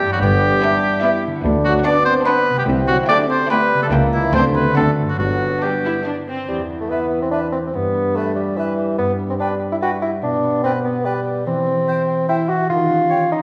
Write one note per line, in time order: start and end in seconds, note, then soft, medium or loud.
0.00 0.15 E2 medium
0.00 1.37 G2 medium
0.00 0.12 G3 medium
0.00 0.21 G3 medium
0.00 1.40 G3 soft
0.00 0.11 B3 medium
0.00 0.12 E4 medium
0.00 0.11 G4 medium
0.00 0.16 B4 soft
0.00 0.11 G5 medium
0.00 0.12 G5 medium
0.08 0.22 F#3 medium
0.08 1.30 B3 soft
0.12 1.42 E4 soft
0.12 0.17 F#4 medium
0.12 0.22 F#5 medium
0.17 1.39 B4 soft
0.21 0.54 G1 medium
0.21 0.54 G2 medium
0.21 1.23 G3 medium
0.21 0.63 B3 medium
0.21 1.22 G4 medium
0.21 1.21 G5 medium
0.63 0.94 B3 medium
0.63 1.05 D4 medium
0.63 0.94 E4 medium
0.63 0.94 E5 medium
1.03 1.35 B3 medium
1.03 1.44 E4 medium
1.03 1.34 E4 medium
1.03 1.34 E5 medium
1.27 2.61 D3 medium
1.31 2.63 B3 medium
1.35 2.65 F#4 medium
1.40 1.77 D2 medium
1.40 1.86 D4 medium
1.40 2.67 B4 medium
1.65 1.84 F#3 medium
1.65 1.74 F#4 medium
1.65 1.85 F#5 medium
1.85 2.67 B3 medium
1.85 2.16 B3 medium
1.85 2.16 D4 medium
1.85 1.95 D4 medium
1.85 2.05 D5 loud
1.85 2.16 F#5 medium
1.85 2.04 D6 medium
2.04 2.26 C4 medium
2.04 2.15 C5 loud
2.04 2.25 C6 medium
2.25 2.39 B3 medium
2.25 2.57 B3 medium
2.25 2.58 D4 medium
2.25 2.57 B4 medium
2.25 2.58 F#5 medium
2.25 2.55 B5 medium
2.50 3.85 C3 medium
2.55 2.62 G3 medium
2.55 3.87 A3 medium
2.55 2.63 G4 medium
2.55 2.67 G5 medium
2.60 3.82 G4 soft
2.64 3.00 C2 medium
2.64 3.00 C2 loud
2.64 3.00 C2 medium
2.64 3.86 E5 medium
2.68 3.08 C4 medium
2.88 2.98 F#3 medium
2.88 2.97 F#4 medium
2.88 3.08 F#5 medium
3.07 3.50 A3 medium
3.07 3.40 A3 medium
3.07 3.28 D4 loud
3.07 3.40 E4 medium
3.07 3.18 D5 loud
3.07 3.40 G5 medium
3.07 3.29 D6 medium
3.27 3.49 C4 medium
3.27 3.49 C5 medium
3.27 3.49 C6 medium
3.48 3.91 G3 medium
3.48 3.81 A3 medium
3.48 3.63 B3 medium
3.48 3.81 E4 medium
3.48 3.81 B4 medium
3.48 3.82 G5 medium
3.48 3.79 B5 medium
3.74 4.27 C#3 medium
3.79 3.86 A3 medium
3.79 4.29 A#3 soft
3.79 3.92 A5 medium
3.83 4.23 G4 soft
3.83 3.87 A4 medium
3.87 4.25 C#2 medium
3.87 4.33 E5 soft
3.92 4.25 C#2 medium
3.92 4.36 A#3 medium
3.92 4.24 A#3 medium
3.92 4.23 E4 medium
3.92 4.23 G5 medium
4.11 4.56 D3 medium
4.11 4.32 E3 medium
4.11 4.33 E4 medium
4.11 4.33 E5 medium
4.19 4.71 B3 soft
4.24 4.73 G4 soft
4.29 4.70 D5 soft
4.33 4.67 D2 medium
4.33 4.90 A3 medium
4.33 4.66 B3 medium
4.33 4.44 C4 medium
4.33 4.65 D4 medium
4.33 4.44 C5 medium
4.33 4.66 G5 medium
4.33 4.53 C6 medium
4.55 5.11 D3 medium
4.55 4.65 B3 medium
4.55 4.76 B4 medium
4.55 4.74 B5 medium
4.62 5.14 C4 soft
4.67 5.16 F#4 soft
4.71 5.13 D5 soft
4.76 5.10 D2 medium
4.76 4.91 A3 medium
4.76 5.08 C4 medium
4.76 5.08 D4 medium
4.76 4.91 A4 medium
4.76 5.08 F#5 medium
4.76 5.06 A5 medium
5.00 6.41 G2 soft
5.05 6.68 B3 soft
5.05 5.18 F#4 medium
5.09 5.17 F#3 medium
5.09 6.46 D4 soft
5.09 5.19 F#5 medium
5.14 6.48 D5 soft
5.18 5.53 G1 medium
5.18 5.53 G2 medium
5.18 5.61 F#3 medium
5.18 6.24 B3 medium
5.18 5.64 F#4 medium
5.18 5.60 F#5 medium
5.61 6.04 G3 soft
5.61 5.71 G3 medium
5.61 5.94 D4 medium
5.61 6.06 G4 medium
5.61 5.95 D5 medium
5.61 6.03 G5 soft
5.84 5.92 E4 medium
6.06 6.38 D4 medium
6.06 6.15 D4 medium
6.06 6.38 D5 medium
6.28 6.49 C4 medium
6.48 7.76 E2 medium
6.48 7.70 E3 medium
6.48 6.63 G3 medium
6.70 7.93 B3 soft
6.80 6.91 A3 medium
6.90 7.22 B3 medium
6.90 7.06 B4 soft
6.90 7.30 E5 soft
6.90 6.98 E5 soft
7.11 8.34 B4 soft
7.22 7.27 C4 medium
7.31 7.41 D4 medium
7.31 7.48 B4 soft
7.31 8.13 E5 soft
7.31 7.39 E5 soft
7.52 7.59 C4 medium
7.52 8.76 G4 soft
7.67 7.76 C4 medium
7.74 8.97 G2 medium
7.74 10.23 G3 medium
7.74 8.18 B3 medium
7.94 9.18 B3 soft
8.14 8.35 A3 medium
8.14 8.31 B4 soft
8.14 8.55 E5 soft
8.14 8.24 E5 soft
8.35 8.58 G3 medium
8.35 9.58 B4 soft
8.56 8.98 E3 medium
8.56 8.74 B4 soft
8.56 9.00 E5 soft
8.56 8.64 E5 soft
8.77 10.00 G4 soft
8.98 10.24 G2 medium
8.98 9.13 B3 medium
9.19 10.42 B3 soft
9.30 9.35 C4 medium
9.39 9.54 D4 medium
9.39 9.56 B4 soft
9.39 9.80 D5 soft
9.39 9.48 G5 soft
9.60 10.83 B4 soft
9.72 9.77 E4 medium
9.81 9.92 F#4 medium
9.81 9.97 B4 soft
9.81 10.63 D5 soft
9.81 9.89 G5 soft
10.01 10.11 E4 medium
10.01 11.23 G4 soft
10.22 11.47 B2 medium
10.22 11.44 B3 medium
10.22 10.63 D4 medium
10.43 11.48 B3 soft
10.63 10.73 C4 medium
10.63 10.79 B4 medium
10.63 11.04 D5 soft
10.63 10.70 G5 medium
10.84 11.07 B3 medium
10.84 11.48 B4 soft
11.04 11.46 G3 medium
11.04 11.20 B4 soft
11.04 11.48 D5 soft
11.04 11.12 G5 medium
11.25 12.48 G4 soft
11.46 12.70 E3 medium
11.46 11.80 E3 medium
11.46 12.27 C4 medium
11.67 12.70 C4 soft
11.87 12.03 C5 medium
11.87 12.28 E5 soft
11.87 11.95 G5 medium
12.08 12.71 C5 soft
12.28 12.50 E4 medium
12.28 12.43 C5 soft
12.28 12.71 E5 medium
12.28 12.35 G5 soft
12.49 12.69 F#4 medium
12.49 13.28 G4 soft
12.69 13.42 D#3 medium
12.69 13.04 D#3 medium
12.69 13.30 F4 medium
12.90 13.42 C#4 soft
13.10 13.42 C#5 soft
13.10 13.25 C#5 soft
13.10 13.18 G5 medium
13.29 13.41 D#4 medium
13.29 13.42 G4 soft